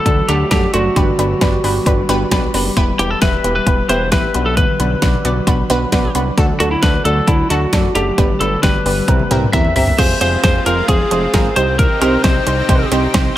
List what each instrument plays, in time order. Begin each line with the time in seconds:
Already playing: lead electric guitar A4
0.06 analog synth bass D2, synth pluck A3 D4 F#4 A4, kick, closed hi-hat
0.17 handpan F#3
0.28 analog synth bass D2, handpan A3, synth pluck A3 D4 F#4 A4, lead electric guitar G4, closed hi-hat
0.51 analog synth bass F#2, synth pluck A3 D4 F#4 A4, lead electric guitar G4, handpan D5, kick, snare, closed hi-hat
0.62 handpan F#4
0.74 analog synth bass F#1, handpan A3, synth pluck A3 D4 F#4 C5, lead electric guitar F#4, closed hi-hat
0.85 handpan F#3
0.96 analog synth bass G1, handpan D3, synth pluck B3 D4 G4 B4, kick, closed hi-hat
1.07 handpan G3
1.19 analog synth bass G1, synth pluck B3 D4 G4 B4, closed hi-hat
1.41 analog synth bass G1, synth pluck B3 D4 G4 B4, handpan D5, kick, snare, closed hi-hat
1.53 handpan G4
1.64 analog synth bass G1, handpan B3, synth pluck B3 D4 G4 B4, open hi-hat
1.75 handpan G3
1.86 analog synth bass G1, synth pluck B3 D4 G4 B4, kick, closed hi-hat
1.98 handpan G3
2.09 analog synth bass G1, handpan B3, synth pluck B3 D4 G4 B4, closed hi-hat
2.31 analog synth bass B1, synth pluck B3 D4 G4 B4, handpan D5, kick, snare, closed hi-hat
2.43 handpan G4
2.54 analog synth bass F#1, handpan B3, synth pluck B3 D4 G4 B4, open hi-hat
2.65 handpan G3
2.77 analog synth bass E1, handpan E3, synth pluck B3 E4 G4 B4, kick, closed hi-hat
2.88 handpan G3
2.99 analog synth bass E1, synth pluck B3 E4 G4 B4, lead electric guitar G4, closed hi-hat
3.10 lead electric guitar A4
3.22 analog synth bass E1, synth pluck B3 E4 G4 B4, lead electric guitar B4, handpan E5, kick, snare, closed hi-hat
3.33 handpan G4
3.44 analog synth bass E1, handpan B3, synth pluck B3 E4 G4 B4, closed hi-hat
3.55 handpan G3, lead electric guitar B4
3.67 analog synth bass E1, synth pluck B3 E4 G4 B4, kick, closed hi-hat
3.78 handpan G3
3.89 analog synth bass E1, handpan B3, synth pluck B3 E4 G4 B4, lead electric guitar C5, closed hi-hat
4.12 analog synth bass A1, synth pluck B3 E4 G4 B4, lead electric guitar B4, handpan E5, kick, snare, closed hi-hat
4.23 handpan G4
4.34 analog synth bass B1, handpan B3, synth pluck B3 D4 F#4 B4, closed hi-hat
4.46 handpan F#3, lead electric guitar A4
4.57 handpan D3, lead electric guitar B4, kick, closed hi-hat
4.68 handpan F#3
4.80 analog synth bass B1, synth pluck B3 D4 F#4 B4, closed hi-hat
5.02 analog synth bass B1, synth pluck B3 D4 F#4 B4, handpan D5, kick, snare, closed hi-hat
5.13 handpan F#4
5.25 analog synth bass B1, handpan B3, synth pluck B3 D4 F#4 D5, closed hi-hat
5.36 handpan F#3
5.47 analog synth bass B1, synth pluck B3 D4 F#4 B4, kick, closed hi-hat
5.59 handpan F#3
5.70 analog synth bass B1, handpan B3, synth pluck B3 D4 F#4 B4, closed hi-hat
5.92 analog synth bass B1, synth pluck B3 D4 F#4 B4, handpan D5, kick, snare, closed hi-hat
6.04 handpan F#4
6.15 analog synth bass C2, handpan B3, synth pluck B3 D4 F#4 B4, closed hi-hat
6.26 handpan F#3
6.38 analog synth bass D2, handpan D3, synth pluck A3 D4 F#4 A4, kick, closed hi-hat
6.49 handpan F#3
6.60 analog synth bass D2, synth pluck A3 D4 F#4 A4, lead electric guitar F#4, closed hi-hat
6.71 lead electric guitar E4
6.82 analog synth bass D2, synth pluck A3 D4 F#4 A4, lead electric guitar B4, handpan D5, kick, snare, closed hi-hat
6.94 handpan F#4
7.05 analog synth bass D2, handpan A3, synth pluck A3 D4 F#4 A4, lead electric guitar A4, closed hi-hat
7.17 handpan F#3
7.27 analog synth bass D2, synth pluck A3 D4 F#4 A4, lead electric guitar E4, kick, closed hi-hat
7.39 handpan F#3
7.50 analog synth bass D2, handpan A3, synth pluck A3 D4 F#4 A4, lead electric guitar F#4, closed hi-hat
7.73 analog synth bass F#2, synth pluck A3 D4 F#4 A4, handpan D5, kick, snare, closed hi-hat
7.84 handpan F#4
7.95 analog synth bass F#1, handpan A3, synth pluck A3 D4 F#4 A4, lead electric guitar G4, closed hi-hat
8.07 handpan F#3
8.18 analog synth bass G1, handpan D3, synth pluck B3 D4 G4 B4, kick, closed hi-hat
8.29 handpan G3
8.40 analog synth bass G1, synth pluck B3 D4 G4 B4, lead electric guitar A4, closed hi-hat
8.63 analog synth bass G1, synth pluck B3 D4 G4 B4, lead electric guitar B4, handpan D5, kick, snare, closed hi-hat
8.74 handpan G4
8.86 analog synth bass G1, handpan B3, synth pluck B3 D4 G4 B4, open hi-hat
8.97 handpan G3
9.08 analog synth bass C2, synth pluck C4 E4 G4 A#4, kick, closed hi-hat, high tom
9.20 handpan A#3, high tom
9.31 analog synth bass C2, handpan C4, synth pluck C4 E4 G4 A#4, closed hi-hat, mid tom
9.42 mid tom
9.53 analog synth bass E2, synth pluck C4 E4 G4 A#4, handpan E5, lead electric guitar E5, kick, closed hi-hat, mid tom
9.65 handpan G4, mid tom
9.76 analog synth bass G1, synth pluck C4 E4 G4 A#4, handpan C4, lead electric guitar E5, floor tom, open hi-hat
9.87 handpan A#3, floor tom
9.98 analog synth bass F1, analog synth pad G#3 C4 F4, synth pluck G#3 C4 F4 G#4 C5, lead electric guitar C5, kick, closed hi-hat, crash
10.21 analog synth bass F1, synth pluck G#3 C4 F4 G#4 C5, lead electric guitar C5, closed hi-hat
10.44 analog synth bass F1, synth pluck G#3 C4 F4 G#4 C5, lead electric guitar C5, kick, snare, closed hi-hat
10.66 analog synth bass F1, synth pluck G#3 C4 F4 G#4 C5, lead electric guitar A#4, closed hi-hat
10.88 analog synth bass F1, synth pluck G#3 C4 F4 G#4 C5, lead electric guitar G#4, kick, closed hi-hat
11.11 analog synth bass F1, synth pluck G#3 C4 F4 G#4 C5, closed hi-hat
11.34 analog synth bass G#1, synth pluck G#3 C4 F4 G#4 A#4, kick, snare, closed hi-hat
11.56 analog synth bass C2, analog synth pad C3 D#4 G4, synth pluck G3 C4 D#4 G4 C5, lead electric guitar C5, closed hi-hat
11.79 lead electric guitar A#4, kick, closed hi-hat
12.01 analog synth bass C2, synth pluck G3 C4 D#4 G4 C5, lead electric guitar A#4, closed hi-hat
12.24 analog synth bass C2, synth pluck G3 C4 D#4 G4 C5, lead electric guitar C5, kick, snare, closed hi-hat
12.47 analog synth bass C2, synth pluck G3 C4 D#4 G4 C5, closed hi-hat
12.69 analog synth bass C2, synth pluck G3 C4 D#4 G4 C5, kick, closed hi-hat
12.92 analog synth bass C2, synth pluck G3 C4 D#4 G4 C5, closed hi-hat
13.14 analog synth bass C2, synth pluck G3 C4 D#4 G4 C5, kick, snare, closed hi-hat